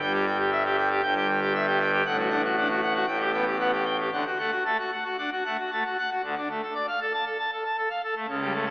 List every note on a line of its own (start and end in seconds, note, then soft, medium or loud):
0.01 1.01 G1 medium
0.01 1.01 G2 medium
0.01 0.13 G5 loud
0.13 0.25 G4 medium
0.26 0.38 G5 medium
0.38 0.50 G4 medium
0.51 0.63 E5 medium
0.65 0.76 G4 medium
0.78 0.89 G5 medium
0.91 1.02 G4 medium
1.03 2.02 G1 medium
1.03 2.02 G2 medium
1.03 1.14 G5 medium
1.16 1.27 G4 medium
1.29 1.40 G5 medium
1.42 1.53 G4 medium
1.55 1.66 E5 medium
1.68 1.79 G4 medium
1.80 1.91 G5 medium
1.93 2.03 G4 medium
2.06 3.04 A1 medium
2.06 3.05 A2 medium
2.06 2.17 F#5 loud
2.18 2.29 F#4 medium
2.30 2.42 D4 medium
2.30 2.42 F#5 medium
2.44 2.55 F#4 medium
2.57 2.68 D4 medium
2.57 2.68 F#5 medium
2.70 2.81 F#4 medium
2.83 2.94 F#5 medium
2.95 3.06 F#4 medium
3.07 4.09 A1 medium
3.07 4.09 A2 medium
3.07 3.19 G5 medium
3.20 3.31 G4 medium
3.33 3.45 B3 medium
3.33 3.45 G5 medium
3.46 3.58 G4 medium
3.60 3.71 B3 medium
3.60 3.71 F#5 medium
3.73 3.84 G4 medium
3.85 3.97 G5 medium
4.00 4.10 G4 soft
4.12 4.24 D2 medium
4.12 4.24 D3 medium
4.12 4.24 F#5 medium
4.26 4.38 F#4 soft
4.39 4.51 A3 soft
4.39 4.51 F#5 medium
4.51 4.63 F#4 medium
4.65 4.77 A3 soft
4.65 4.77 A5 medium
4.79 4.91 F#4 medium
4.92 5.04 F#5 medium
5.04 5.16 F#4 medium
5.18 5.30 D4 soft
5.18 5.30 F#5 medium
5.32 5.43 F#4 soft
5.45 5.57 A3 soft
5.45 5.57 F#5 medium
5.59 5.70 F#4 soft
5.72 5.83 A3 soft
5.72 5.83 A5 medium
5.86 5.97 F#4 medium
5.98 6.10 F#5 medium
6.11 6.22 F#4 soft
6.24 6.35 D2 medium
6.24 6.35 D3 medium
6.37 6.48 D4 medium
6.50 6.61 A3 medium
6.62 6.74 A4 soft
6.75 6.86 D5 soft
6.88 6.99 F5 medium
7.01 7.12 A4 soft
7.13 7.25 A5 medium
7.26 7.37 A4 medium
7.39 7.50 A5 medium
7.53 7.64 A4 medium
7.65 7.76 A5 medium
7.77 7.89 A4 medium
7.90 8.01 F5 medium
8.04 8.15 A4 medium
8.16 8.26 A3 medium
8.28 8.70 C#2 medium
8.28 8.70 C#3 medium
8.41 8.52 G3 medium
8.54 8.65 A3 medium
8.66 8.70 A4 medium